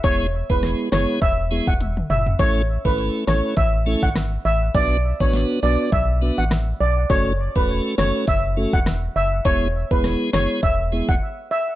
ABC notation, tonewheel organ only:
X:1
M:4/4
L:1/16
Q:"Swing 16ths" 1/4=102
K:Emix
V:1 name="Tonewheel organ"
[G,B,EG] z2 [G,B,EG]3 [G,B,EG]2 z2 [G,B,EG] z4 z | [A,CEA] z2 [A,CEA]3 [A,CEA]2 z2 [A,CEA] z4 z | [B,DFB] z2 [B,DFB]3 [B,DFB]2 z2 [B,DFB] z4 z | [A,CFA] z2 [A,CFA]3 [A,CFA]2 z2 [A,CFA] z4 z |
[G,B,EG] z2 [G,B,EG]3 [G,B,EG]2 z2 [G,B,EG] z4 z |]